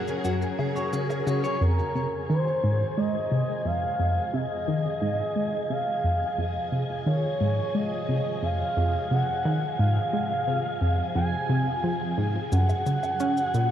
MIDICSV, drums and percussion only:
0, 0, Header, 1, 2, 480
1, 0, Start_track
1, 0, Tempo, 681818
1, 1133, Time_signature, 4, 2, 24, 8
1, 9655, End_track
2, 0, Start_track
2, 0, Title_t, "Drums"
2, 54, Note_on_c, 9, 69, 36
2, 124, Note_off_c, 9, 69, 0
2, 174, Note_on_c, 9, 69, 82
2, 244, Note_off_c, 9, 69, 0
2, 295, Note_on_c, 9, 69, 35
2, 365, Note_off_c, 9, 69, 0
2, 415, Note_on_c, 9, 77, 72
2, 485, Note_off_c, 9, 77, 0
2, 536, Note_on_c, 9, 69, 36
2, 607, Note_off_c, 9, 69, 0
2, 655, Note_on_c, 9, 69, 83
2, 726, Note_off_c, 9, 69, 0
2, 776, Note_on_c, 9, 69, 37
2, 776, Note_on_c, 9, 77, 50
2, 846, Note_off_c, 9, 69, 0
2, 846, Note_off_c, 9, 77, 0
2, 896, Note_on_c, 9, 69, 58
2, 966, Note_off_c, 9, 69, 0
2, 1015, Note_on_c, 9, 69, 36
2, 1085, Note_off_c, 9, 69, 0
2, 8814, Note_on_c, 9, 69, 91
2, 8885, Note_off_c, 9, 69, 0
2, 8934, Note_on_c, 9, 69, 38
2, 8934, Note_on_c, 9, 77, 53
2, 9005, Note_off_c, 9, 69, 0
2, 9005, Note_off_c, 9, 77, 0
2, 9053, Note_on_c, 9, 69, 65
2, 9123, Note_off_c, 9, 69, 0
2, 9173, Note_on_c, 9, 69, 38
2, 9173, Note_on_c, 9, 77, 50
2, 9243, Note_off_c, 9, 69, 0
2, 9243, Note_off_c, 9, 77, 0
2, 9291, Note_on_c, 9, 69, 87
2, 9361, Note_off_c, 9, 69, 0
2, 9412, Note_on_c, 9, 69, 39
2, 9483, Note_off_c, 9, 69, 0
2, 9532, Note_on_c, 9, 69, 68
2, 9602, Note_off_c, 9, 69, 0
2, 9655, End_track
0, 0, End_of_file